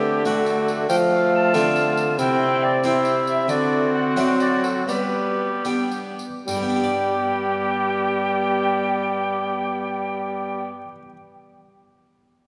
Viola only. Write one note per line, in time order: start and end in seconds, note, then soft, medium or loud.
0.00 0.25 A3 medium
0.25 0.89 A3 medium
0.90 2.16 A3 medium
2.18 2.82 C4 medium
2.85 3.48 C4 medium
3.50 4.85 C4 medium
4.88 6.19 B3 medium
6.48 10.68 B3 medium